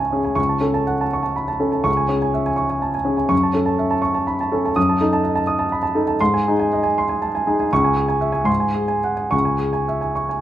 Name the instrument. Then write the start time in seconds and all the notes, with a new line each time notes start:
grand piano
Already playing: C#2 C#4 G#4 E5 G#5 A5 C#6
0.12 C#4 G#4
0.24 G#5
0.35 C#2 C#6
0.49 A5
0.61 C#4 A4
0.74 A5
0.87 F#5
1.01 A5
1.13 C#6
1.23 A5
1.36 B5
1.48 A5
1.60 C#4 A4
1.72 A5
1.84 C#2 C#6
1.97 G#5
2.09 C#4 G#4
2.22 G#5
2.34 E5
2.46 G#5
2.56 C#6
2.70 G#5
2.82 A5
2.95 G#5
3.05 C#4 G#4
3.17 G#5
3.29 F#2 C#6
3.43 A5
3.53 C#4 A4
3.66 A5
3.79 E5
3.91 A5
4.02 C#6
4.14 A5
4.27 B5
4.41 A5
4.52 C#4 A4
4.65 A5
4.76 F#2 D#6
4.89 A5
5.01 D#4 A4
5.13 A5
5.24 D#5
5.35 A5
5.47 D#6
5.59 A5
5.72 B5
5.83 A5
5.95 D#4 A4
6.08 A5
6.21 G#2 C6
6.34 G#5
6.48 D#4 G#4
6.59 G#5
6.73 D#5
6.83 G#5
6.98 C6
7.09 G#5
7.22 A5
7.35 G#5
7.47 D#4 G#4
7.60 G#5
7.73 C#2 C#6
7.84 G#5
7.97 G#4
8.08 G#5
8.21 E5
8.32 G#5
8.44 G#2 C6
8.60 G#5
8.74 G#4
8.88 G#5
9.04 F#5
9.17 G#5
9.31 C#2 C#6
9.45 G#5
9.59 G#4
9.73 G#5
9.88 E5
10.01 G#5
10.15 C#6
10.29 G#5